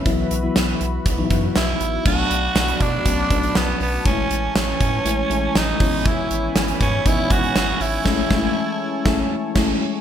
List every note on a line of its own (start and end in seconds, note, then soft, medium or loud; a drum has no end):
0.00 0.28 B4 medium
0.00 2.02 E5 medium
0.05 0.24 B1 loud
0.05 0.39 E3 medium
0.05 0.39 F#3 medium
0.05 0.39 B3 medium
0.05 0.40 E4 loud
0.05 2.04 F#4 medium
0.05 2.04 B4 medium
0.05 2.04 B5 medium
0.05 kick medium
0.05 closed hi-hat medium
0.31 0.49 B1 loud
0.31 closed hi-hat medium
0.43 1.10 E3 medium
0.43 1.10 F#3 medium
0.43 1.10 B3 medium
0.43 1.11 E4 medium
0.56 0.74 B1 medium
0.56 snare loud
0.56 closed hi-hat medium
0.81 0.99 B1 loud
0.81 closed hi-hat medium
1.06 1.24 B1 loud
1.06 kick medium
1.06 closed hi-hat medium
1.18 1.96 E3 medium
1.18 1.96 F#3 medium
1.18 1.96 B3 medium
1.18 1.24 D#4 medium
1.25 2.00 E4 medium
1.30 1.48 F#2 medium
1.30 kick medium
1.30 closed hi-hat medium
1.56 1.74 B1 loud
1.56 2.03 E4 medium
1.56 snare loud
1.56 closed hi-hat medium
1.80 1.98 A1 medium
1.80 closed hi-hat medium
2.05 2.24 B1 loud
2.05 2.95 F#3 medium
2.05 2.95 A3 medium
2.05 2.95 B3 medium
2.05 2.95 D4 medium
2.05 4.04 F#4 medium
2.05 2.83 F#4 loud
2.05 5.77 A5 medium
2.05 4.04 B5 medium
2.05 kick loud
2.05 crash medium
2.30 2.49 B1 medium
2.30 closed hi-hat medium
2.55 2.73 B1 loud
2.55 snare loud
2.55 closed hi-hat medium
2.68 closed hi-hat medium
2.80 2.99 B2 medium
2.80 3.58 D4 loud
2.80 kick medium
2.80 closed hi-hat medium
3.05 3.24 B1 medium
3.05 3.28 F#3 medium
3.05 3.28 A3 medium
3.05 3.28 B3 medium
3.05 3.28 C#4 medium
3.05 kick medium
3.05 closed hi-hat medium
3.30 3.48 B1 medium
3.30 3.97 F#3 medium
3.30 3.98 A3 medium
3.30 3.98 B3 medium
3.30 3.98 D4 medium
3.30 kick medium
3.30 closed hi-hat medium
3.43 closed hi-hat soft
3.55 3.74 B1 loud
3.55 3.81 B3 medium
3.55 snare loud
3.55 closed hi-hat medium
3.80 3.98 B1 loud
3.80 4.05 B3 medium
3.80 open hi-hat medium
4.05 4.24 A1 loud
4.05 10.01 E3 medium
4.05 4.95 G#3 medium
4.05 4.95 A3 medium
4.05 4.95 C#4 medium
4.05 4.53 C#4 medium
4.05 4.12 D#4 medium
4.05 5.79 C#5 medium
4.05 10.01 G#5 medium
4.05 kick medium
4.05 closed hi-hat medium
4.12 4.98 E4 medium
4.31 4.49 A1 medium
4.31 closed hi-hat medium
4.55 4.73 A1 medium
4.55 5.58 C#4 medium
4.55 snare loud
4.55 closed hi-hat medium
4.80 4.99 A2 loud
4.80 kick medium
4.80 closed hi-hat medium
5.05 5.23 A1 loud
5.05 5.28 G#3 medium
5.05 5.28 A3 medium
5.05 5.28 C#4 medium
5.05 5.28 E4 medium
5.05 closed hi-hat medium
5.30 5.48 A1 loud
5.30 5.79 G#3 medium
5.30 5.80 A3 medium
5.30 5.79 C#4 medium
5.30 5.80 E4 medium
5.30 closed hi-hat medium
5.55 5.73 A1 loud
5.55 6.09 D#4 medium
5.55 snare loud
5.55 closed hi-hat medium
5.80 6.16 G#1 loud
5.80 6.70 G#3 medium
5.80 6.70 B3 medium
5.80 6.70 C#4 medium
5.80 6.70 E4 medium
5.80 10.01 C#5 medium
5.80 8.04 B5 medium
5.80 kick medium
5.80 open hi-hat medium
6.05 6.56 E4 medium
6.05 kick loud
6.05 closed hi-hat medium
6.30 6.49 G#1 loud
6.30 closed hi-hat medium
6.55 6.73 G#1 medium
6.55 snare loud
6.55 closed hi-hat medium
6.68 closed hi-hat medium
6.80 6.99 G#2 loud
6.80 7.08 C#4 medium
6.80 kick medium
6.80 closed hi-hat medium
7.05 7.24 G#1 loud
7.05 7.28 G#3 medium
7.05 7.28 B3 medium
7.05 7.28 C#4 medium
7.05 7.28 D#4 medium
7.05 7.33 E4 loud
7.05 kick loud
7.05 closed hi-hat medium
7.30 7.48 G#1 loud
7.30 7.97 G#3 medium
7.30 7.97 B3 medium
7.30 7.98 C#4 medium
7.30 7.37 D#4 medium
7.30 7.83 F#4 loud
7.30 kick medium
7.30 closed hi-hat medium
7.37 8.01 E4 medium
7.44 closed hi-hat soft
7.55 7.73 G#1 medium
7.55 snare loud
7.55 closed hi-hat medium
7.80 7.98 G#1 medium
7.80 9.56 E4 loud
7.80 open hi-hat medium
8.05 8.23 A1 loud
8.05 8.22 G#3 loud
8.05 8.22 A3 loud
8.05 8.23 C#4 loud
8.05 10.01 A5 medium
8.05 kick loud
8.05 snare loud
8.05 crash medium
8.12 8.26 E4 loud
8.30 8.48 A1 loud
8.30 8.47 G#3 loud
8.30 8.48 A3 loud
8.30 8.48 C#4 loud
8.30 kick loud
8.30 snare loud
8.37 8.51 E4 medium
9.05 9.23 A1 loud
9.05 9.22 G#3 medium
9.05 9.22 A3 loud
9.05 9.23 C#4 medium
9.05 9.23 E4 loud
9.05 kick loud
9.05 snare loud
9.55 9.73 A1 loud
9.55 9.72 G#3 loud
9.55 9.72 A3 loud
9.55 9.73 C#4 medium
9.55 9.73 E4 loud
9.55 kick loud
9.55 snare loud
9.55 crash medium